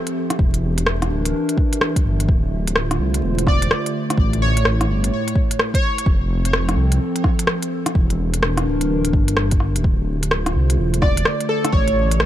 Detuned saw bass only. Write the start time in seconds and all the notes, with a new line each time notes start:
0.39 E1
1.10 D1
2.04 G1
2.29 D1
2.99 C2
3.23 E1
4.17 A1
4.88 G1
6.06 F1
6.76 C2
7.95 E1
8.66 D1
9.13 G1
9.76 D1
9.84 D1
10.55 C2
10.78 E1
11.73 A1